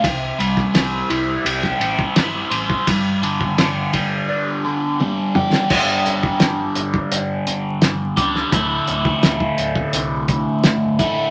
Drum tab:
CC |----------------|----------------|x---------------|----------------|
RD |x-x-x-x-x-x-x-x-|x-x-x-x---------|----------------|----------------|
HH |----------------|----------------|--x-x-x-x-x-x-x-|x-x-x-x-x-x-x-x-|
SD |---oo----o--o---|----o----------o|----o-------o--o|----o-------o---|
T1 |----------------|------------o---|----------------|----------------|
T2 |----------------|--------------o-|----------------|----------------|
BD |o--o-----o-o---o|o--o--o---------|o--o---o------o-|o--o-o-o--o---o-|